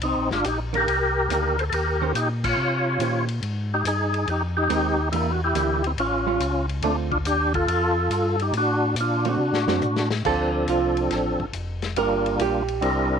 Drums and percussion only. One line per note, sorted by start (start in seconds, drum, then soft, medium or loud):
0.02 ride medium
0.31 snare medium
0.44 hi-hat pedal soft
0.44 ride medium
0.74 ride soft
0.88 ride medium
1.30 hi-hat pedal medium
1.30 ride medium
1.59 ride soft
1.72 ride medium
2.15 hi-hat pedal medium
2.15 ride medium
2.44 kick medium
2.44 crash medium
3.00 hi-hat pedal medium
3.00 ride medium
3.29 ride medium
3.43 ride medium
3.85 hi-hat pedal medium
3.85 ride medium
4.14 ride soft
4.28 ride medium
4.70 hi-hat pedal medium
4.70 ride medium
5.13 ride medium
5.55 hi-hat pedal medium
5.55 ride medium
5.84 ride soft
5.98 ride medium
6.40 hi-hat pedal medium
6.40 ride medium
6.69 ride soft
6.82 ride medium
7.12 kick medium
7.25 hi-hat pedal medium
7.25 ride medium
7.54 kick medium
7.54 ride soft
7.68 ride medium
8.11 hi-hat pedal medium
8.11 ride medium
8.39 ride soft
8.53 ride medium
8.96 hi-hat pedal medium
8.96 ride medium
9.25 ride soft
9.54 snare medium
9.68 snare medium
9.81 hi-hat pedal soft
9.81 high tom medium
9.96 snare medium
10.11 snare medium
10.25 kick medium
10.25 crash medium
10.68 hi-hat pedal medium
10.68 ride medium
10.97 ride soft
11.11 snare soft
11.11 ride medium
11.40 kick medium
11.53 hi-hat pedal medium
11.53 ride medium
11.82 snare medium
11.82 ride soft
11.96 ride medium
12.26 ride soft
12.39 hi-hat pedal medium
12.39 ride medium
12.68 ride soft
12.82 ride medium